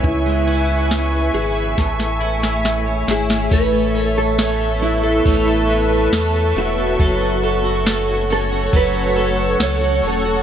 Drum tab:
RD |----------------|x-x-x-x-x-x-x-x-|x-x-x-x-x-x-x-x-|
HH |x-x-x-x-x-x-x-x-|----------------|----------------|
TB |----------------|----x-------x---|----x-------x---|
SD |----o---oo-oo-oo|----o-------o---|----o-------o---|
BD |o-------o-------|o-------o-------|o-------o-------|